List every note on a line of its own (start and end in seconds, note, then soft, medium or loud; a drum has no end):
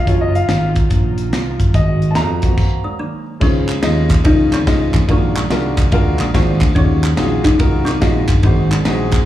0.00 1.71 F#3 medium
0.00 1.72 F4 medium
0.07 0.43 F#1 medium
0.07 0.38 F#3 medium
0.07 0.39 C#4 soft
0.07 1.74 C#4 medium
0.07 1.73 D#4 medium
0.07 0.39 F4 medium
0.07 0.22 C#5 medium
0.07 kick loud
0.07 closed hi-hat medium
0.21 0.36 D#5 medium
0.35 0.74 F5 loud
0.35 closed hi-hat medium
0.48 0.84 G#1 medium
0.48 snare loud
0.48 closed hi-hat medium
0.76 kick loud
0.76 closed hi-hat medium
0.90 1.32 A#1 medium
0.90 kick loud
0.90 closed hi-hat medium
1.18 closed hi-hat medium
1.32 1.55 C2 medium
1.32 snare loud
1.32 closed hi-hat medium
1.60 1.72 G1 medium
1.60 kick medium
1.60 closed hi-hat medium
1.74 2.18 G#1 loud
1.74 2.58 G#3 medium
1.74 2.58 A#3 medium
1.74 2.58 C4 medium
1.74 2.58 F#4 medium
1.74 2.13 D#5 medium
1.74 kick loud
1.74 closed hi-hat medium
2.02 closed hi-hat medium
2.11 2.16 A5 medium
2.15 2.52 F2 medium
2.15 3.23 A#5 loud
2.15 snare loud
2.15 closed hi-hat medium
2.42 2.96 A#3 medium
2.42 2.97 C4 soft
2.42 2.97 F#4 medium
2.42 kick loud
2.42 snare soft
2.42 closed hi-hat medium
2.58 kick loud
2.58 crash medium
2.84 3.00 G#3 medium
2.99 3.39 D#3 medium
2.99 3.39 F#3 medium
2.99 3.43 A#3 medium
3.40 3.77 C#2 loud
3.40 4.06 C#3 medium
3.40 4.22 F3 medium
3.40 3.72 G#3 medium
3.40 4.22 G#3 medium
3.40 3.73 C#4 medium
3.40 4.28 C#4 loud
3.40 3.73 D#4 medium
3.40 3.73 F4 medium
3.40 3.73 C5 medium
3.40 kick loud
3.40 crash medium
3.69 clap loud
3.69 ride bell medium
3.82 4.19 D#2 medium
3.82 4.14 G#3 medium
3.82 4.14 C#4 medium
3.82 4.14 D#4 medium
3.82 4.15 F4 medium
3.82 4.15 D#5 medium
3.82 snare loud
3.82 ride bell medium
4.09 kick loud
4.09 snare soft
4.09 clap loud
4.09 ride bell medium
4.24 4.48 C2 loud
4.24 4.56 G#3 medium
4.24 5.05 G#3 medium
4.24 4.52 C4 medium
4.24 4.56 C#4 medium
4.24 4.56 D#4 medium
4.24 4.54 D#4 loud
4.24 4.56 F4 medium
4.24 4.57 D#5 medium
4.24 kick loud
4.24 ride bell medium
4.52 4.65 C#2 medium
4.52 5.06 D#3 medium
4.52 5.06 F3 medium
4.52 5.05 C4 loud
4.52 snare soft
4.52 clap medium
4.52 ride bell medium
4.66 4.90 C2 medium
4.66 4.98 G#3 medium
4.66 4.98 C#4 medium
4.66 4.99 D#4 medium
4.66 4.99 F4 medium
4.66 4.99 D#5 medium
4.66 kick medium
4.66 snare loud
4.66 ride bell medium
4.94 5.07 A1 loud
4.94 kick medium
4.94 clap medium
4.94 ride bell medium
5.08 5.44 A#1 loud
5.08 5.74 A#2 medium
5.08 5.35 D3 medium
5.08 5.35 F3 medium
5.08 5.40 G#3 medium
5.08 5.38 A#3 loud
5.08 5.40 D4 medium
5.08 5.40 F4 medium
5.08 5.40 F#4 medium
5.08 5.41 A#4 medium
5.08 kick loud
5.08 ride bell medium
5.36 6.16 D3 medium
5.36 6.16 F3 medium
5.36 5.76 G#3 medium
5.36 clap loud
5.36 ride bell medium
5.50 5.92 C2 loud
5.50 5.82 G#3 medium
5.50 5.82 D4 medium
5.50 5.82 F4 medium
5.50 5.83 F#4 medium
5.50 5.83 A#4 medium
5.50 snare loud
5.50 ride bell medium
5.77 kick loud
5.77 clap medium
5.77 ride bell medium
5.92 6.15 D2 loud
5.92 6.24 G#3 medium
5.92 6.24 D4 medium
5.92 6.24 F4 medium
5.92 6.24 F#4 medium
5.92 6.25 A#4 loud
5.92 kick loud
5.92 ride bell medium
6.19 6.32 A#1 loud
6.19 6.35 G#3 medium
6.19 snare soft
6.19 clap medium
6.19 ride bell medium
6.34 6.58 G#1 medium
6.34 6.74 D3 medium
6.34 6.74 F3 medium
6.34 6.66 G#3 medium
6.34 6.78 A#3 loud
6.34 6.65 D4 medium
6.34 6.66 F4 medium
6.34 6.66 F#4 medium
6.34 6.66 C5 medium
6.34 kick medium
6.34 snare loud
6.34 ride bell medium
6.61 6.74 D2 loud
6.61 kick loud
6.61 clap medium
6.61 ride bell medium
6.75 7.12 D#2 loud
6.75 7.41 D#3 medium
6.75 7.57 F3 medium
6.75 7.45 F#3 medium
6.75 7.07 G#3 medium
6.75 7.47 C#4 loud
6.75 7.07 D#4 medium
6.75 7.07 F4 medium
6.75 7.08 F#4 medium
6.75 7.08 C#5 medium
6.75 kick loud
6.75 ride bell medium
7.04 clap loud
7.04 ride bell soft
7.16 7.41 A#1 loud
7.16 7.49 G#3 medium
7.16 7.49 D#4 medium
7.16 7.49 F4 medium
7.16 7.49 F#4 medium
7.16 7.50 G#4 medium
7.16 snare loud
7.16 ride bell medium
7.44 7.58 C#2 loud
7.44 7.87 F#3 medium
7.44 8.26 G#3 medium
7.44 7.88 D#4 loud
7.44 kick medium
7.44 snare soft
7.44 clap medium
7.44 ride bell medium
7.58 7.95 C2 loud
7.58 7.90 G#3 medium
7.58 7.91 D#4 medium
7.58 7.91 F4 medium
7.58 7.91 F#4 medium
7.58 7.91 A#4 loud
7.58 kick loud
7.58 ride bell medium
7.85 8.40 F3 medium
7.85 8.40 F#3 medium
7.85 8.45 C4 loud
7.85 snare soft
7.85 clap medium
7.85 ride bell medium
8.00 8.25 A#1 medium
8.00 8.32 G#3 medium
8.00 8.33 D#4 medium
8.00 8.33 F4 medium
8.00 8.33 F#4 medium
8.00 8.33 D#5 medium
8.00 kick medium
8.00 snare loud
8.00 ride bell medium
8.28 8.41 G1 medium
8.28 kick loud
8.28 clap loud
8.28 ride bell medium
8.43 8.79 G#1 loud
8.43 9.09 G#2 medium
8.43 8.71 D#3 medium
8.43 9.25 F#3 medium
8.43 8.75 G#3 medium
8.43 8.72 A#3 medium
8.43 8.75 C4 medium
8.43 8.75 D#4 medium
8.43 8.76 F#4 medium
8.43 8.76 C5 medium
8.43 kick loud
8.43 ride bell medium
8.71 9.25 C3 medium
8.71 9.25 D#3 medium
8.71 9.10 G#3 medium
8.71 clap loud
8.71 ride bell medium
8.85 9.22 A#1 loud
8.85 9.17 G#3 medium
8.85 9.17 C4 medium
8.85 9.18 D#4 medium
8.85 9.18 F#4 medium
8.85 9.18 G#4 medium
8.85 snare loud
8.85 ride bell medium
9.11 kick loud
9.11 snare soft
9.11 clap loud
9.11 ride bell medium